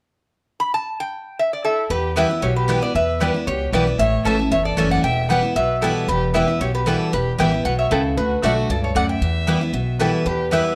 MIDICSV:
0, 0, Header, 1, 6, 480
1, 0, Start_track
1, 0, Tempo, 261210
1, 1575, Time_signature, 4, 2, 24, 8
1, 19756, End_track
2, 0, Start_track
2, 0, Title_t, "Resonator guitar played with a steel bar"
2, 0, Program_c, 0, 25
2, 1101, Note_on_c, 0, 83, 109
2, 1329, Note_off_c, 0, 83, 0
2, 1360, Note_on_c, 0, 81, 99
2, 1832, Note_off_c, 0, 81, 0
2, 1840, Note_on_c, 0, 79, 96
2, 2561, Note_on_c, 0, 76, 88
2, 2565, Note_off_c, 0, 79, 0
2, 2780, Note_off_c, 0, 76, 0
2, 2814, Note_on_c, 0, 74, 80
2, 3016, Note_off_c, 0, 74, 0
2, 3023, Note_on_c, 0, 69, 96
2, 3036, Note_on_c, 0, 76, 79
2, 3366, Note_off_c, 0, 76, 0
2, 3501, Note_on_c, 0, 71, 102
2, 3514, Note_off_c, 0, 69, 0
2, 3946, Note_off_c, 0, 71, 0
2, 3988, Note_on_c, 0, 76, 89
2, 4458, Note_on_c, 0, 73, 97
2, 4477, Note_off_c, 0, 76, 0
2, 4689, Note_off_c, 0, 73, 0
2, 4711, Note_on_c, 0, 71, 92
2, 5192, Note_on_c, 0, 74, 87
2, 5203, Note_off_c, 0, 71, 0
2, 5425, Note_off_c, 0, 74, 0
2, 5433, Note_on_c, 0, 76, 103
2, 5904, Note_on_c, 0, 74, 86
2, 5906, Note_off_c, 0, 76, 0
2, 6371, Note_off_c, 0, 74, 0
2, 6379, Note_on_c, 0, 73, 93
2, 6853, Note_off_c, 0, 73, 0
2, 6860, Note_on_c, 0, 74, 95
2, 7330, Note_off_c, 0, 74, 0
2, 7337, Note_on_c, 0, 76, 110
2, 7816, Note_on_c, 0, 81, 91
2, 7833, Note_off_c, 0, 76, 0
2, 8264, Note_off_c, 0, 81, 0
2, 8305, Note_on_c, 0, 76, 103
2, 8533, Note_off_c, 0, 76, 0
2, 8550, Note_on_c, 0, 74, 90
2, 9029, Note_on_c, 0, 78, 97
2, 9044, Note_off_c, 0, 74, 0
2, 9244, Note_off_c, 0, 78, 0
2, 9260, Note_on_c, 0, 79, 116
2, 9733, Note_off_c, 0, 79, 0
2, 9740, Note_on_c, 0, 78, 88
2, 10186, Note_off_c, 0, 78, 0
2, 10219, Note_on_c, 0, 76, 101
2, 10694, Note_on_c, 0, 69, 91
2, 10713, Note_off_c, 0, 76, 0
2, 11143, Note_off_c, 0, 69, 0
2, 11180, Note_on_c, 0, 71, 105
2, 11660, Note_on_c, 0, 76, 85
2, 11674, Note_off_c, 0, 71, 0
2, 12147, Note_on_c, 0, 73, 88
2, 12154, Note_off_c, 0, 76, 0
2, 12374, Note_off_c, 0, 73, 0
2, 12398, Note_on_c, 0, 71, 89
2, 12624, Note_on_c, 0, 69, 94
2, 12630, Note_off_c, 0, 71, 0
2, 13067, Note_off_c, 0, 69, 0
2, 13116, Note_on_c, 0, 71, 101
2, 13593, Note_on_c, 0, 79, 88
2, 13600, Note_off_c, 0, 71, 0
2, 14031, Note_off_c, 0, 79, 0
2, 14064, Note_on_c, 0, 78, 101
2, 14291, Note_off_c, 0, 78, 0
2, 14310, Note_on_c, 0, 76, 82
2, 14523, Note_off_c, 0, 76, 0
2, 14547, Note_on_c, 0, 69, 91
2, 14988, Note_off_c, 0, 69, 0
2, 15021, Note_on_c, 0, 71, 97
2, 15512, Note_off_c, 0, 71, 0
2, 15513, Note_on_c, 0, 76, 81
2, 15951, Note_off_c, 0, 76, 0
2, 15993, Note_on_c, 0, 74, 94
2, 16236, Note_off_c, 0, 74, 0
2, 16244, Note_on_c, 0, 73, 75
2, 16449, Note_off_c, 0, 73, 0
2, 16472, Note_on_c, 0, 78, 92
2, 16694, Note_off_c, 0, 78, 0
2, 16708, Note_on_c, 0, 79, 86
2, 18303, Note_off_c, 0, 79, 0
2, 18383, Note_on_c, 0, 69, 81
2, 18825, Note_off_c, 0, 69, 0
2, 18859, Note_on_c, 0, 71, 90
2, 19343, Note_on_c, 0, 76, 89
2, 19350, Note_off_c, 0, 71, 0
2, 19756, Note_off_c, 0, 76, 0
2, 19756, End_track
3, 0, Start_track
3, 0, Title_t, "Fiddle"
3, 0, Program_c, 1, 110
3, 3019, Note_on_c, 1, 64, 67
3, 3465, Note_off_c, 1, 64, 0
3, 3493, Note_on_c, 1, 67, 87
3, 3941, Note_off_c, 1, 67, 0
3, 3979, Note_on_c, 1, 71, 77
3, 4425, Note_off_c, 1, 71, 0
3, 4448, Note_on_c, 1, 67, 78
3, 4683, Note_off_c, 1, 67, 0
3, 4703, Note_on_c, 1, 67, 78
3, 5151, Note_off_c, 1, 67, 0
3, 5192, Note_on_c, 1, 71, 75
3, 5417, Note_off_c, 1, 71, 0
3, 5417, Note_on_c, 1, 71, 89
3, 5886, Note_off_c, 1, 71, 0
3, 5897, Note_on_c, 1, 71, 85
3, 6344, Note_off_c, 1, 71, 0
3, 6385, Note_on_c, 1, 67, 79
3, 6829, Note_off_c, 1, 67, 0
3, 6857, Note_on_c, 1, 71, 73
3, 7305, Note_off_c, 1, 71, 0
3, 7336, Note_on_c, 1, 73, 94
3, 7784, Note_off_c, 1, 73, 0
3, 7807, Note_on_c, 1, 76, 84
3, 8260, Note_off_c, 1, 76, 0
3, 8297, Note_on_c, 1, 73, 82
3, 8529, Note_off_c, 1, 73, 0
3, 8542, Note_on_c, 1, 69, 81
3, 8991, Note_off_c, 1, 69, 0
3, 9036, Note_on_c, 1, 74, 83
3, 9244, Note_off_c, 1, 74, 0
3, 9255, Note_on_c, 1, 76, 94
3, 9703, Note_off_c, 1, 76, 0
3, 9739, Note_on_c, 1, 71, 85
3, 10186, Note_off_c, 1, 71, 0
3, 10211, Note_on_c, 1, 71, 83
3, 10661, Note_off_c, 1, 71, 0
3, 10700, Note_on_c, 1, 64, 67
3, 11146, Note_off_c, 1, 64, 0
3, 11181, Note_on_c, 1, 67, 88
3, 11627, Note_off_c, 1, 67, 0
3, 11677, Note_on_c, 1, 71, 79
3, 12115, Note_off_c, 1, 71, 0
3, 12149, Note_on_c, 1, 67, 78
3, 12375, Note_off_c, 1, 67, 0
3, 12405, Note_on_c, 1, 67, 70
3, 12611, Note_off_c, 1, 67, 0
3, 12631, Note_on_c, 1, 64, 73
3, 13071, Note_off_c, 1, 64, 0
3, 13118, Note_on_c, 1, 67, 84
3, 13555, Note_off_c, 1, 67, 0
3, 13597, Note_on_c, 1, 76, 86
3, 14034, Note_off_c, 1, 76, 0
3, 14060, Note_on_c, 1, 71, 77
3, 14289, Note_off_c, 1, 71, 0
3, 14306, Note_on_c, 1, 73, 74
3, 14521, Note_off_c, 1, 73, 0
3, 14542, Note_on_c, 1, 64, 61
3, 14985, Note_off_c, 1, 64, 0
3, 15029, Note_on_c, 1, 66, 81
3, 15469, Note_off_c, 1, 66, 0
3, 15510, Note_on_c, 1, 69, 74
3, 15949, Note_off_c, 1, 69, 0
3, 15986, Note_on_c, 1, 69, 73
3, 16211, Note_off_c, 1, 69, 0
3, 16233, Note_on_c, 1, 69, 66
3, 16444, Note_off_c, 1, 69, 0
3, 16469, Note_on_c, 1, 74, 72
3, 16693, Note_off_c, 1, 74, 0
3, 16721, Note_on_c, 1, 76, 81
3, 18309, Note_off_c, 1, 76, 0
3, 18377, Note_on_c, 1, 64, 67
3, 18822, Note_off_c, 1, 64, 0
3, 18866, Note_on_c, 1, 67, 77
3, 19306, Note_off_c, 1, 67, 0
3, 19345, Note_on_c, 1, 71, 70
3, 19756, Note_off_c, 1, 71, 0
3, 19756, End_track
4, 0, Start_track
4, 0, Title_t, "Mandolin"
4, 0, Program_c, 2, 25
4, 3966, Note_on_c, 2, 59, 91
4, 3983, Note_on_c, 2, 64, 92
4, 3989, Note_on_c, 2, 71, 94
4, 3998, Note_on_c, 2, 79, 101
4, 4143, Note_off_c, 2, 59, 0
4, 4151, Note_off_c, 2, 64, 0
4, 4154, Note_off_c, 2, 71, 0
4, 4159, Note_off_c, 2, 79, 0
4, 4925, Note_on_c, 2, 59, 89
4, 4935, Note_on_c, 2, 64, 78
4, 4943, Note_on_c, 2, 71, 83
4, 4950, Note_on_c, 2, 79, 88
4, 5103, Note_off_c, 2, 59, 0
4, 5108, Note_off_c, 2, 64, 0
4, 5112, Note_off_c, 2, 71, 0
4, 5115, Note_off_c, 2, 79, 0
4, 5885, Note_on_c, 2, 59, 92
4, 5894, Note_on_c, 2, 64, 91
4, 5898, Note_on_c, 2, 71, 98
4, 5910, Note_on_c, 2, 79, 93
4, 6063, Note_off_c, 2, 59, 0
4, 6067, Note_off_c, 2, 64, 0
4, 6070, Note_off_c, 2, 71, 0
4, 6076, Note_off_c, 2, 79, 0
4, 6854, Note_on_c, 2, 59, 85
4, 6862, Note_on_c, 2, 64, 90
4, 6869, Note_on_c, 2, 71, 97
4, 6874, Note_on_c, 2, 79, 93
4, 7028, Note_off_c, 2, 59, 0
4, 7032, Note_off_c, 2, 64, 0
4, 7035, Note_off_c, 2, 71, 0
4, 7038, Note_off_c, 2, 79, 0
4, 7803, Note_on_c, 2, 61, 89
4, 7815, Note_on_c, 2, 69, 89
4, 7821, Note_on_c, 2, 76, 91
4, 7831, Note_on_c, 2, 81, 97
4, 7983, Note_off_c, 2, 61, 0
4, 7988, Note_off_c, 2, 69, 0
4, 7992, Note_off_c, 2, 76, 0
4, 7997, Note_off_c, 2, 81, 0
4, 8759, Note_on_c, 2, 61, 86
4, 8770, Note_on_c, 2, 69, 85
4, 8780, Note_on_c, 2, 76, 94
4, 8788, Note_on_c, 2, 81, 92
4, 8940, Note_off_c, 2, 61, 0
4, 8946, Note_off_c, 2, 69, 0
4, 8952, Note_off_c, 2, 76, 0
4, 8955, Note_off_c, 2, 81, 0
4, 9717, Note_on_c, 2, 59, 79
4, 9728, Note_on_c, 2, 64, 88
4, 9739, Note_on_c, 2, 71, 94
4, 9744, Note_on_c, 2, 79, 91
4, 9900, Note_off_c, 2, 59, 0
4, 9905, Note_off_c, 2, 64, 0
4, 9911, Note_off_c, 2, 71, 0
4, 9913, Note_off_c, 2, 79, 0
4, 10684, Note_on_c, 2, 59, 78
4, 10692, Note_on_c, 2, 64, 79
4, 10706, Note_on_c, 2, 71, 86
4, 10709, Note_on_c, 2, 79, 94
4, 10863, Note_off_c, 2, 59, 0
4, 10867, Note_off_c, 2, 64, 0
4, 10874, Note_off_c, 2, 71, 0
4, 10875, Note_off_c, 2, 79, 0
4, 11644, Note_on_c, 2, 59, 83
4, 11656, Note_on_c, 2, 64, 86
4, 11664, Note_on_c, 2, 71, 95
4, 11671, Note_on_c, 2, 79, 88
4, 11823, Note_off_c, 2, 59, 0
4, 11829, Note_off_c, 2, 64, 0
4, 11833, Note_off_c, 2, 71, 0
4, 11836, Note_off_c, 2, 79, 0
4, 12614, Note_on_c, 2, 59, 81
4, 12623, Note_on_c, 2, 64, 83
4, 12633, Note_on_c, 2, 71, 97
4, 12639, Note_on_c, 2, 79, 92
4, 12787, Note_off_c, 2, 59, 0
4, 12792, Note_off_c, 2, 64, 0
4, 12797, Note_off_c, 2, 71, 0
4, 12800, Note_off_c, 2, 79, 0
4, 13571, Note_on_c, 2, 59, 89
4, 13582, Note_on_c, 2, 64, 95
4, 13587, Note_on_c, 2, 71, 95
4, 13599, Note_on_c, 2, 79, 98
4, 13745, Note_off_c, 2, 59, 0
4, 13750, Note_off_c, 2, 64, 0
4, 13753, Note_off_c, 2, 71, 0
4, 13759, Note_off_c, 2, 79, 0
4, 14533, Note_on_c, 2, 59, 78
4, 14542, Note_on_c, 2, 64, 93
4, 14549, Note_on_c, 2, 71, 94
4, 14559, Note_on_c, 2, 79, 97
4, 14706, Note_off_c, 2, 59, 0
4, 14710, Note_off_c, 2, 64, 0
4, 14714, Note_off_c, 2, 71, 0
4, 14718, Note_off_c, 2, 79, 0
4, 15482, Note_on_c, 2, 57, 87
4, 15491, Note_on_c, 2, 66, 97
4, 15503, Note_on_c, 2, 74, 101
4, 15512, Note_on_c, 2, 78, 100
4, 15659, Note_off_c, 2, 57, 0
4, 15664, Note_off_c, 2, 66, 0
4, 15670, Note_off_c, 2, 74, 0
4, 15675, Note_off_c, 2, 78, 0
4, 16445, Note_on_c, 2, 57, 81
4, 16458, Note_on_c, 2, 66, 78
4, 16467, Note_on_c, 2, 74, 93
4, 16475, Note_on_c, 2, 78, 98
4, 16621, Note_off_c, 2, 57, 0
4, 16628, Note_off_c, 2, 66, 0
4, 16632, Note_off_c, 2, 74, 0
4, 16636, Note_off_c, 2, 78, 0
4, 17402, Note_on_c, 2, 59, 87
4, 17414, Note_on_c, 2, 64, 91
4, 17422, Note_on_c, 2, 71, 94
4, 17426, Note_on_c, 2, 79, 90
4, 17579, Note_off_c, 2, 59, 0
4, 17585, Note_off_c, 2, 64, 0
4, 17589, Note_off_c, 2, 71, 0
4, 17591, Note_off_c, 2, 79, 0
4, 18364, Note_on_c, 2, 59, 80
4, 18372, Note_on_c, 2, 64, 84
4, 18384, Note_on_c, 2, 71, 88
4, 18388, Note_on_c, 2, 79, 96
4, 18540, Note_off_c, 2, 59, 0
4, 18544, Note_off_c, 2, 64, 0
4, 18550, Note_off_c, 2, 71, 0
4, 18552, Note_off_c, 2, 79, 0
4, 19324, Note_on_c, 2, 59, 82
4, 19337, Note_on_c, 2, 64, 89
4, 19342, Note_on_c, 2, 71, 99
4, 19351, Note_on_c, 2, 79, 100
4, 19500, Note_off_c, 2, 59, 0
4, 19506, Note_off_c, 2, 64, 0
4, 19509, Note_off_c, 2, 71, 0
4, 19513, Note_off_c, 2, 79, 0
4, 19756, End_track
5, 0, Start_track
5, 0, Title_t, "Steel-string acoustic guitar"
5, 0, Program_c, 3, 25
5, 3496, Note_on_c, 3, 40, 83
5, 3975, Note_on_c, 3, 52, 92
5, 3986, Note_on_c, 3, 55, 94
5, 4001, Note_on_c, 3, 59, 95
5, 4007, Note_on_c, 3, 64, 97
5, 4192, Note_off_c, 3, 64, 0
5, 4214, Note_off_c, 3, 52, 0
5, 4214, Note_on_c, 3, 64, 57
5, 4220, Note_off_c, 3, 55, 0
5, 4222, Note_off_c, 3, 59, 0
5, 4244, Note_on_c, 3, 59, 52
5, 4411, Note_off_c, 3, 40, 0
5, 4442, Note_off_c, 3, 64, 0
5, 4452, Note_on_c, 3, 47, 90
5, 4457, Note_off_c, 3, 59, 0
5, 4922, Note_on_c, 3, 52, 95
5, 4938, Note_on_c, 3, 55, 90
5, 4946, Note_on_c, 3, 59, 91
5, 4955, Note_on_c, 3, 64, 94
5, 5157, Note_off_c, 3, 64, 0
5, 5169, Note_off_c, 3, 52, 0
5, 5176, Note_off_c, 3, 55, 0
5, 5179, Note_on_c, 3, 64, 56
5, 5180, Note_off_c, 3, 59, 0
5, 5214, Note_on_c, 3, 59, 48
5, 5369, Note_off_c, 3, 47, 0
5, 5405, Note_off_c, 3, 64, 0
5, 5423, Note_off_c, 3, 59, 0
5, 5429, Note_on_c, 3, 40, 86
5, 5892, Note_on_c, 3, 52, 80
5, 5906, Note_on_c, 3, 55, 93
5, 5918, Note_on_c, 3, 59, 83
5, 5930, Note_on_c, 3, 64, 90
5, 6119, Note_off_c, 3, 64, 0
5, 6134, Note_off_c, 3, 52, 0
5, 6141, Note_off_c, 3, 55, 0
5, 6141, Note_on_c, 3, 64, 56
5, 6147, Note_off_c, 3, 59, 0
5, 6177, Note_on_c, 3, 59, 47
5, 6338, Note_off_c, 3, 40, 0
5, 6367, Note_off_c, 3, 64, 0
5, 6385, Note_off_c, 3, 59, 0
5, 6390, Note_on_c, 3, 47, 87
5, 6860, Note_on_c, 3, 52, 82
5, 6870, Note_on_c, 3, 55, 91
5, 6882, Note_on_c, 3, 59, 86
5, 6889, Note_on_c, 3, 64, 94
5, 7089, Note_off_c, 3, 64, 0
5, 7098, Note_off_c, 3, 52, 0
5, 7103, Note_off_c, 3, 55, 0
5, 7109, Note_off_c, 3, 59, 0
5, 7111, Note_on_c, 3, 64, 52
5, 7146, Note_on_c, 3, 59, 44
5, 7299, Note_off_c, 3, 47, 0
5, 7332, Note_off_c, 3, 64, 0
5, 7341, Note_on_c, 3, 45, 89
5, 7349, Note_off_c, 3, 59, 0
5, 7815, Note_on_c, 3, 52, 91
5, 7834, Note_on_c, 3, 57, 90
5, 7839, Note_on_c, 3, 61, 89
5, 7847, Note_on_c, 3, 64, 106
5, 8048, Note_off_c, 3, 64, 0
5, 8056, Note_off_c, 3, 52, 0
5, 8065, Note_off_c, 3, 57, 0
5, 8067, Note_off_c, 3, 61, 0
5, 8070, Note_on_c, 3, 64, 59
5, 8109, Note_on_c, 3, 61, 44
5, 8254, Note_off_c, 3, 45, 0
5, 8291, Note_off_c, 3, 64, 0
5, 8298, Note_on_c, 3, 40, 92
5, 8311, Note_off_c, 3, 61, 0
5, 8765, Note_on_c, 3, 52, 86
5, 8782, Note_on_c, 3, 57, 93
5, 8788, Note_on_c, 3, 61, 104
5, 8805, Note_on_c, 3, 64, 94
5, 9212, Note_off_c, 3, 40, 0
5, 9229, Note_off_c, 3, 52, 0
5, 9237, Note_off_c, 3, 57, 0
5, 9241, Note_off_c, 3, 61, 0
5, 9249, Note_off_c, 3, 64, 0
5, 9257, Note_on_c, 3, 40, 82
5, 9735, Note_on_c, 3, 52, 83
5, 9749, Note_on_c, 3, 55, 90
5, 9760, Note_on_c, 3, 59, 92
5, 9775, Note_on_c, 3, 64, 97
5, 9947, Note_off_c, 3, 64, 0
5, 9969, Note_on_c, 3, 64, 55
5, 9976, Note_off_c, 3, 52, 0
5, 9983, Note_off_c, 3, 55, 0
5, 9983, Note_off_c, 3, 59, 0
5, 10005, Note_on_c, 3, 59, 47
5, 10172, Note_off_c, 3, 40, 0
5, 10201, Note_off_c, 3, 64, 0
5, 10216, Note_on_c, 3, 47, 90
5, 10219, Note_off_c, 3, 59, 0
5, 10696, Note_on_c, 3, 52, 84
5, 10705, Note_on_c, 3, 55, 93
5, 10726, Note_on_c, 3, 59, 102
5, 10730, Note_on_c, 3, 64, 102
5, 11131, Note_off_c, 3, 47, 0
5, 11154, Note_off_c, 3, 52, 0
5, 11159, Note_off_c, 3, 55, 0
5, 11169, Note_off_c, 3, 59, 0
5, 11171, Note_off_c, 3, 64, 0
5, 11194, Note_on_c, 3, 40, 91
5, 11650, Note_on_c, 3, 52, 83
5, 11672, Note_on_c, 3, 55, 88
5, 11682, Note_on_c, 3, 59, 95
5, 11693, Note_on_c, 3, 64, 86
5, 11879, Note_off_c, 3, 64, 0
5, 11893, Note_off_c, 3, 52, 0
5, 11901, Note_on_c, 3, 64, 61
5, 11903, Note_off_c, 3, 55, 0
5, 11909, Note_off_c, 3, 59, 0
5, 11936, Note_on_c, 3, 59, 47
5, 12100, Note_off_c, 3, 40, 0
5, 12126, Note_off_c, 3, 64, 0
5, 12143, Note_on_c, 3, 47, 92
5, 12144, Note_off_c, 3, 59, 0
5, 12606, Note_on_c, 3, 52, 87
5, 12619, Note_on_c, 3, 55, 85
5, 12631, Note_on_c, 3, 59, 90
5, 12646, Note_on_c, 3, 64, 93
5, 13053, Note_off_c, 3, 47, 0
5, 13069, Note_off_c, 3, 52, 0
5, 13075, Note_off_c, 3, 55, 0
5, 13081, Note_off_c, 3, 59, 0
5, 13089, Note_off_c, 3, 64, 0
5, 13104, Note_on_c, 3, 40, 86
5, 13571, Note_on_c, 3, 52, 96
5, 13592, Note_on_c, 3, 55, 92
5, 13602, Note_on_c, 3, 59, 87
5, 13612, Note_on_c, 3, 64, 94
5, 13792, Note_off_c, 3, 64, 0
5, 13812, Note_off_c, 3, 52, 0
5, 13814, Note_on_c, 3, 64, 64
5, 13823, Note_off_c, 3, 55, 0
5, 13828, Note_off_c, 3, 59, 0
5, 13856, Note_on_c, 3, 59, 48
5, 14013, Note_off_c, 3, 40, 0
5, 14042, Note_off_c, 3, 64, 0
5, 14058, Note_on_c, 3, 47, 94
5, 14063, Note_off_c, 3, 59, 0
5, 14514, Note_off_c, 3, 47, 0
5, 14535, Note_on_c, 3, 49, 91
5, 14992, Note_off_c, 3, 49, 0
5, 15024, Note_on_c, 3, 50, 84
5, 15476, Note_off_c, 3, 50, 0
5, 15499, Note_on_c, 3, 50, 97
5, 15507, Note_on_c, 3, 57, 90
5, 15516, Note_on_c, 3, 62, 89
5, 15535, Note_on_c, 3, 66, 96
5, 15953, Note_off_c, 3, 50, 0
5, 15958, Note_off_c, 3, 57, 0
5, 15962, Note_off_c, 3, 62, 0
5, 15971, Note_off_c, 3, 66, 0
5, 15984, Note_on_c, 3, 43, 90
5, 16436, Note_off_c, 3, 43, 0
5, 16460, Note_on_c, 3, 42, 89
5, 16913, Note_off_c, 3, 42, 0
5, 16941, Note_on_c, 3, 40, 88
5, 17406, Note_on_c, 3, 52, 97
5, 17420, Note_on_c, 3, 55, 92
5, 17428, Note_on_c, 3, 59, 90
5, 17439, Note_on_c, 3, 64, 97
5, 17637, Note_off_c, 3, 64, 0
5, 17648, Note_off_c, 3, 52, 0
5, 17655, Note_off_c, 3, 55, 0
5, 17659, Note_off_c, 3, 59, 0
5, 17660, Note_on_c, 3, 64, 56
5, 17690, Note_on_c, 3, 59, 52
5, 17850, Note_off_c, 3, 40, 0
5, 17883, Note_off_c, 3, 64, 0
5, 17889, Note_on_c, 3, 47, 89
5, 17898, Note_off_c, 3, 59, 0
5, 18367, Note_on_c, 3, 52, 87
5, 18380, Note_on_c, 3, 55, 92
5, 18396, Note_on_c, 3, 59, 93
5, 18397, Note_on_c, 3, 64, 97
5, 18805, Note_off_c, 3, 47, 0
5, 18827, Note_off_c, 3, 52, 0
5, 18833, Note_off_c, 3, 55, 0
5, 18841, Note_off_c, 3, 59, 0
5, 18842, Note_off_c, 3, 64, 0
5, 18848, Note_on_c, 3, 40, 83
5, 19316, Note_on_c, 3, 52, 85
5, 19330, Note_on_c, 3, 55, 86
5, 19349, Note_on_c, 3, 59, 101
5, 19352, Note_on_c, 3, 64, 107
5, 19756, Note_off_c, 3, 40, 0
5, 19756, Note_off_c, 3, 52, 0
5, 19756, Note_off_c, 3, 55, 0
5, 19756, Note_off_c, 3, 59, 0
5, 19756, Note_off_c, 3, 64, 0
5, 19756, End_track
6, 0, Start_track
6, 0, Title_t, "Upright bass"
6, 0, Program_c, 4, 32
6, 3491, Note_on_c, 4, 40, 84
6, 4117, Note_off_c, 4, 40, 0
6, 4456, Note_on_c, 4, 35, 85
6, 5082, Note_off_c, 4, 35, 0
6, 5418, Note_on_c, 4, 40, 89
6, 6043, Note_off_c, 4, 40, 0
6, 6378, Note_on_c, 4, 37, 81
6, 6787, Note_off_c, 4, 37, 0
6, 6846, Note_on_c, 4, 35, 91
6, 7260, Note_off_c, 4, 35, 0
6, 7319, Note_on_c, 4, 33, 93
6, 7638, Note_off_c, 4, 33, 0
6, 7813, Note_on_c, 4, 33, 85
6, 8224, Note_off_c, 4, 33, 0
6, 8291, Note_on_c, 4, 31, 83
6, 8703, Note_off_c, 4, 31, 0
6, 8768, Note_on_c, 4, 30, 89
6, 9181, Note_off_c, 4, 30, 0
6, 9244, Note_on_c, 4, 28, 87
6, 9874, Note_off_c, 4, 28, 0
6, 10211, Note_on_c, 4, 35, 79
6, 10838, Note_off_c, 4, 35, 0
6, 11167, Note_on_c, 4, 28, 84
6, 11795, Note_off_c, 4, 28, 0
6, 12133, Note_on_c, 4, 35, 82
6, 12758, Note_off_c, 4, 35, 0
6, 13103, Note_on_c, 4, 28, 85
6, 13413, Note_off_c, 4, 28, 0
6, 13575, Note_on_c, 4, 33, 81
6, 13983, Note_off_c, 4, 33, 0
6, 14057, Note_on_c, 4, 35, 79
6, 14465, Note_off_c, 4, 35, 0
6, 14535, Note_on_c, 4, 37, 91
6, 14943, Note_off_c, 4, 37, 0
6, 15021, Note_on_c, 4, 38, 89
6, 15331, Note_off_c, 4, 38, 0
6, 15494, Note_on_c, 4, 35, 87
6, 15902, Note_off_c, 4, 35, 0
6, 15974, Note_on_c, 4, 37, 88
6, 16382, Note_off_c, 4, 37, 0
6, 16455, Note_on_c, 4, 38, 91
6, 16863, Note_off_c, 4, 38, 0
6, 16934, Note_on_c, 4, 40, 89
6, 17558, Note_off_c, 4, 40, 0
6, 17880, Note_on_c, 4, 35, 86
6, 18509, Note_off_c, 4, 35, 0
6, 18846, Note_on_c, 4, 40, 85
6, 19472, Note_off_c, 4, 40, 0
6, 19756, End_track
0, 0, End_of_file